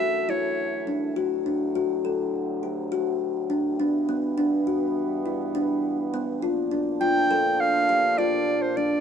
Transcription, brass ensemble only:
0.00 1.13 F#2 medium
0.00 1.13 E3 medium
0.00 1.13 A3 medium
1.14 3.76 D2 medium
1.14 3.76 A2 medium
1.14 3.76 F#3 medium
3.78 6.39 G2 medium
3.78 6.40 E3 medium
3.78 6.40 B3 medium
6.43 9.00 A#2 medium
6.43 9.00 F3 medium
6.43 9.00 D4 medium

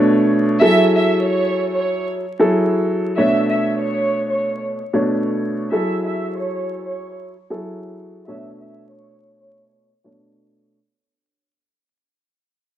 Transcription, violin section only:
0.61 0.90 E5 loud
0.95 1.23 E5 medium
1.25 1.73 C#5 medium
1.76 2.05 C#5 medium
3.19 3.47 E5 loud
3.50 3.78 E5 medium
3.81 4.28 C#5 loud
4.31 4.60 C#5 medium
5.72 6.01 E5 loud
6.04 6.33 E5 medium
6.36 6.83 C#5 medium
6.86 7.15 C#5 medium
8.27 8.56 E5 loud
8.59 8.88 E5 medium
8.91 9.39 C#5 medium
9.42 9.71 C#5 medium

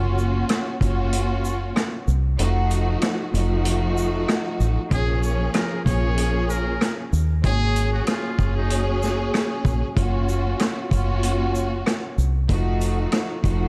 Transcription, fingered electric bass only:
0.00 0.43 F#1 loud
0.81 1.72 F#1 medium
2.08 2.36 C2 loud
2.39 2.95 F1 loud
3.34 4.24 F1 medium
4.60 4.77 A1 medium
4.91 5.48 A#1 loud
5.86 6.77 A#1 loud
7.13 7.41 D#2 loud
7.44 8.00 G#1 loud
8.39 9.29 F#1 loud
9.65 9.82 A#1 loud
9.97 10.53 F#1 loud
10.91 11.82 F#1 medium
12.18 12.46 C2 loud
12.49 13.06 F1 loud
13.44 13.68 F1 medium

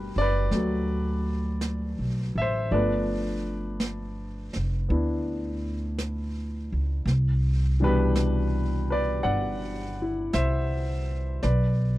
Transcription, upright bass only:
0.00 0.12 G1 medium
0.16 0.48 F#1 medium
0.51 1.93 D2 medium
1.99 2.32 B1 soft
2.35 2.69 A1 medium
2.71 4.51 G1 medium
4.56 4.88 F1 medium
4.90 6.68 D2 medium
6.72 7.04 C#2 medium
7.05 9.20 C2 medium
9.25 10.30 G1 medium
10.34 11.39 C2 medium
11.44 11.98 B1 medium

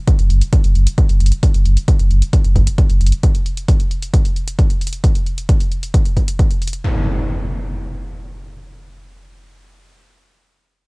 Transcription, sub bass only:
0.19 0.29 F#1 medium
0.30 0.41 F#1 loud
0.64 0.75 F#1 medium
0.75 0.86 F#1 loud
1.09 1.20 F#1 medium
1.20 1.31 F#1 loud
1.54 1.65 F#1 medium
1.65 1.77 F#1 loud
1.99 2.10 F#1 medium
2.11 2.22 F#1 loud
2.45 2.55 F#1 medium
2.56 2.67 F#1 loud
2.90 3.00 F#1 medium
3.01 3.12 F#1 loud

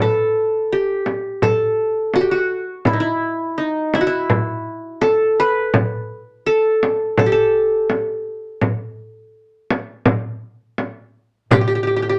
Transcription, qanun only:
0.00 1.19 A4 medium
0.00 0.74 B4 medium
0.72 1.98 G4 medium
1.43 2.60 A4 medium
2.16 2.27 F#4 medium
2.21 2.37 G4 medium
2.31 3.61 F#4 medium
2.87 2.99 E4 medium
2.93 3.06 D#4 medium
3.00 3.64 E4 medium
3.58 4.01 D#4 medium
3.95 4.06 E4 medium
4.01 5.31 F#4 medium
4.07 5.46 E4 medium
5.01 6.19 A4 medium
5.40 6.50 B4 medium
6.46 7.19 A4 medium
7.19 7.32 A4 medium
7.26 8.52 G4 medium
7.32 10.75 A4 medium
11.53 11.61 G4 medium
11.61 11.67 G4 medium
11.68 11.75 G4 medium
11.75 11.83 G4 medium
11.83 11.87 G4 medium
11.87 11.96 G4 medium
11.96 12.02 G4 medium
12.02 12.09 G4 medium
12.09 12.19 G4 medium

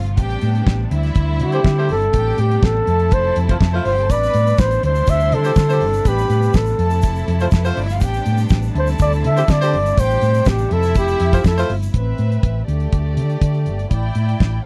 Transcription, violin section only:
0.18 0.66 G4 medium
0.18 0.66 G5 medium
0.91 1.87 E4 medium
0.91 1.87 E5 medium
2.13 2.62 G4 medium
2.13 2.62 G5 medium
2.87 3.71 A4 medium
2.87 3.71 A5 medium
3.77 3.85 E4 medium
3.77 3.85 E5 medium
3.85 3.93 F4 medium
3.85 3.93 F5 medium
3.93 4.02 G4 medium
3.93 4.02 G5 medium
4.02 4.10 A4 medium
4.02 4.10 A5 medium
4.10 4.58 B4 medium
4.10 4.58 B5 medium
4.83 5.79 C5 medium
4.83 5.79 C6 medium
6.05 6.54 B4 medium
6.05 6.53 B5 medium
6.79 7.47 A4 medium
6.79 7.47 A5 medium
7.52 7.61 A3 medium
7.52 7.61 A4 medium
7.61 7.69 B3 medium
7.61 7.69 B4 medium
7.68 7.77 C4 medium
7.68 7.77 C5 medium
7.76 7.85 D4 medium
7.76 7.85 D5 medium
7.84 7.93 E4 medium
7.84 7.93 E5 loud
7.93 8.01 F4 medium
7.93 8.01 F5 medium
8.01 8.49 G4 medium
8.01 8.49 G5 loud
8.75 9.71 A4 medium
8.75 9.71 A5 medium
9.98 10.46 G4 medium
9.98 10.46 G5 loud
10.71 11.67 E4 medium
10.71 11.67 E5 loud
11.94 12.66 C4 medium
11.94 12.66 B4 medium
11.94 12.66 E5 medium
12.67 13.88 A3 medium
12.67 13.88 G4 medium
12.67 13.88 D5 medium
13.91 14.64 E4 medium
13.91 14.64 D5 medium
13.91 14.64 G5 medium

